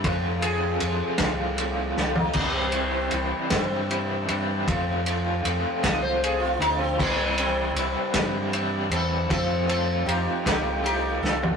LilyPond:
<<
  \new Staff \with { instrumentName = "Sitar" } { \time 6/8 \key f \major \tempo 4. = 52 r8 aes'2~ aes'16 ees'16~ | ees'16 c'8 c'8. c'4.~ | c'8 r4 ees''16 c''16 aes'16 f'16 ees'16 c'16 | bes8 c'4 r4 <c' a'>8 |
<c' a'>8 <c' a'>8 <ees' g'>8 <ees' g'>8 <ees' g'>8 a'8 | }
  \new Staff \with { instrumentName = "Overdriven electric guitar" } { \time 6/8 \key f \major <f a c' f'>8 <f a c' f'>8 <f a c' f'>8 <f a c' f'>8 <f a c' f'>8 <f a c' f'>8 | <e g c' e'>8 <e g c' e'>8 <e g c' e'>8 <e g c' e'>8 <e g c' e'>8 <e g c' e'>8 | <f a c' f'>8 <f a c' f'>8 <f a c' f'>8 <f a c' f'>8 <f a c' f'>8 <f a c' f'>8 | <e g c' e'>8 <e g c' e'>8 <e g c' e'>8 <e g c' e'>8 <e g c' e'>8 <e g c' e'>8 |
<f a c' f'>8 <f a c' f'>8 <f a c' f'>8 <f a c' f'>8 <f a c' f'>8 <f a c' f'>8 | }
  \new Staff \with { instrumentName = "Fingered electric bass" } { \clef bass \time 6/8 \key f \major f,4 f,16 r16 c,4 c,8 | c,4 c,16 r16 g,4 g,8 | f,4 f,16 r16 c,4 d,8 | c,4 c,16 r16 g,4 e,8 |
f,4 f,16 r16 c,4 c,8 | }
  \new DrumStaff \with { instrumentName = "Drums" } \drummode { \time 6/8 <bd cymr>8 cymr8 cymr8 <bd cymr sn>8 cymr8 sn16 tomfh16 | <cymc bd>8 cymr8 cymr8 <bd cymr sn>8 cymr8 cymr8 | <bd cymr>8 cymr8 cymr8 <bd cymr sn>8 cymr8 cymr8 | <cymc bd>8 cymr8 cymr8 <bd cymr sn>8 cymr8 cymr8 |
<bd cymr>8 cymr8 cymr8 <bd cymr sn>8 cymr8 sn16 tomfh16 | }
>>